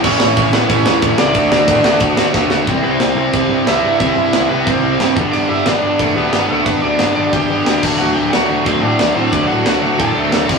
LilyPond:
<<
  \new Staff \with { instrumentName = "Overdriven electric guitar" } { \time 4/4 \key d \mixolydian \tempo 4 = 180 <cis' cis''>4. <b b'>8 <cis' cis''>4. <d' d''>8~ | <d' d''>2. r4 | r8 <b b'>16 <c' c''>8. <c' c''>4. <e' e''>4 | <e' e''>4. <b b'>8 <c' c''>4. r8 |
<d' d''>8 <e' e''>8 <d' d''>4 <a a'>8 <b b'>4 <a a'>8 | <b b'>8 <d' d''>4 <d' d''>8 <g' g''>4. r8 | <fis' fis''>8 <g' g''>8 <fis' fis''>4 <c' c''>8 <d' d''>4 <c' c''>8 | <d' d''>8 <fis' fis''>4 <fis' fis''>8 <a' a''>4. r8 | }
  \new Staff \with { instrumentName = "Distorted electric guitar" } { \time 4/4 \key d \mixolydian <a, e a cis' e'>8 <a, e a cis' e'>8 <a, e a cis' e'>8 <a, e a cis' e'>8 <a, e a cis' e'>8 <a, e a cis' e'>8 <a, e a cis' e'>8 <a, e a cis' e'>8 | <d a d' fis'>8 <d a d' fis'>8 <d a d' fis'>8 <d a d' fis'>8 <d a d' fis'>8 <d a d' fis'>8 <d a d' fis'>8 <d a d' fis'>8 | <c g c' e'>4. <c g c' e'>4. <c g c' e'>4 | <c g c' e'>4. <c g c' e'>4. <c g c' e'>8 <g, d g b d'>8~ |
<g, d g b d'>4 <g, d g b d'>4. <g, d g b d'>4 <g, d g b d'>8~ | <g, d g b d'>4 <g, d g b d'>4. <g, d g b d'>4 <d fis a d'>8~ | <d fis a d'>4 <d fis a d'>4. <d fis a d'>4 <d fis a d'>8~ | <d fis a d'>4 <d fis a d'>4. <d fis a d'>4 <c g c' e'>8 | }
  \new Staff \with { instrumentName = "Distorted electric guitar" } { \time 4/4 \key d \mixolydian <a, e a cis' e'>8 <a, e a cis' e'>8 <a, e a cis' e'>8 <a, e a cis' e'>8 <a, e a cis' e'>8 <a, e a cis' e'>8 <a, e a cis' e'>8 <a, e a cis' e'>8 | <d a d' fis'>8 <d a d' fis'>8 <d a d' fis'>8 <d a d' fis'>8 <d a d' fis'>8 <d a d' fis'>8 <d a d' fis'>8 <d a d' fis'>8 | <c g c' e'>2 <c g c' e'>2 | <c g c' e'>2 <c g c' e'>4. <g, d g b d'>8~ |
<g, d g b d'>4. <g, d g b d'>2 <g, d g b d'>8~ | <g, d g b d'>4. <g, d g b d'>2 <d fis a d'>8~ | <d fis a d'>4. <d fis a d'>2 <d fis a d'>8~ | <d fis a d'>4. <d fis a d'>2 <c g c' e'>8 | }
  \new Staff \with { instrumentName = "Picked electric bass" } { \clef bass \time 4/4 \key d \mixolydian a,,8 a,,8 a,4 a,,8 e,8 a,,8 cis,8 | d,8 d,8 a,,8 d,8 d,4 d,4 | c,8 c,8 c,8 c,8 c,8 g,8 c,8 g,8 | c,8 g,8 c,8 c,8 g,8 c,8 g,8 g,,8 |
g,,8 g,,8 g,,8 g,,8 g,,8 d,8 g,,8 d,8 | g,,8 d,8 g,,8 g,,8 d,8 g,,8 d,8 d,8 | d,8 d,8 d,8 d,8 d,8 a,8 d,8 a,8 | d,8 a,8 d,8 d,8 a,8 d,8 d,8 c,8 | }
  \new DrumStaff \with { instrumentName = "Drums" } \drummode { \time 4/4 <cymc bd>8 sn8 <bd cymr>8 sn8 <bd cymr>8 sn8 <bd cymr>8 sn8 | <bd cymr>8 sn8 <bd cymr>8 sn8 <bd cymr>8 sn8 <bd sn>8 sn8 | <cymc bd>4 <cymc sn>4 <cymc bd>4 <cymc sn>4 | <cymc bd>4 <cymc sn>4 <cymc bd>4 <cymc sn>8 bd8 |
cymc4 <cymc sn>4 <cymc bd>4 <cymc sn>4 | <cymc bd>4 <cymc sn>4 <cymc bd>4 <cymc sn>8 <cymc bd>8 | cymc4 <cymc sn>4 <cymc bd>4 <cymc sn>4 | <cymc bd>4 <cymc sn>4 <cymc bd>4 <cymc sn>8 <cymc bd>8 | }
>>